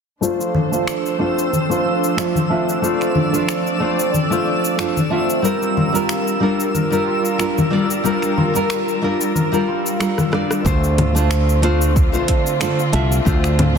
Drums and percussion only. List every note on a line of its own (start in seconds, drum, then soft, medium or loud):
0.23 cabasa soft
0.41 cabasa soft
0.55 high conga medium
0.73 cabasa medium
0.87 finger snap medium
0.87 cabasa soft
1.06 cabasa soft
1.39 cabasa medium
1.53 high conga medium
1.53 cabasa soft
1.71 cabasa soft
2.04 cabasa medium
2.18 finger snap medium
2.18 cabasa soft
2.35 high conga medium
2.35 cabasa soft
2.69 cabasa medium
2.84 cabasa medium
3.01 finger snap soft
3.01 cabasa soft
3.15 high conga medium
3.34 cabasa medium
3.49 finger snap loud
3.49 cabasa soft
3.67 cabasa soft
3.99 cabasa medium
4.14 high conga medium
4.14 cabasa medium
4.32 cabasa soft
4.65 cabasa medium
4.79 finger snap loud
4.79 cabasa medium
4.97 high conga medium
4.97 cabasa soft
5.30 cabasa medium
5.45 cabasa soft
5.63 cabasa soft
5.77 high conga medium
5.95 cabasa medium
6.09 finger snap medium
6.09 cabasa medium
6.27 cabasa soft
6.60 cabasa medium
6.75 high conga medium
6.75 cabasa medium
6.93 cabasa soft
7.25 cabasa medium
7.39 finger snap medium
7.39 cabasa soft
7.58 high conga loud
7.58 cabasa soft
7.91 cabasa medium
8.05 cabasa medium
8.22 finger snap soft
8.22 cabasa soft
8.38 high conga medium
8.56 cabasa medium
8.70 finger snap medium
8.70 cabasa medium
8.88 cabasa soft
9.21 cabasa medium
9.35 high conga medium
9.35 cabasa medium
9.54 cabasa soft
9.86 cabasa medium
10.00 finger snap medium
10.00 cross-stick medium
10.00 cabasa medium
10.18 cross-stick medium
10.18 high conga medium
10.18 cabasa soft
10.33 cross-stick medium
10.51 cross-stick medium
10.51 cabasa medium
10.66 kick loud
10.66 cabasa medium
10.84 cabasa soft
10.98 closed hi-hat medium
10.98 low conga medium
11.16 cabasa medium
11.31 finger snap loud
11.31 cabasa medium
11.49 cabasa soft
11.63 closed hi-hat medium
11.82 cabasa medium
11.96 kick loud
11.96 cabasa medium
12.14 cabasa soft
12.28 kick medium
12.28 closed hi-hat medium
12.47 cabasa medium
12.61 finger snap loud
12.61 cabasa medium
12.79 cabasa soft
12.93 closed hi-hat medium
13.12 cabasa medium
13.26 kick loud
13.26 cabasa medium
13.44 finger snap soft
13.44 cabasa soft
13.59 closed hi-hat medium
13.59 low conga medium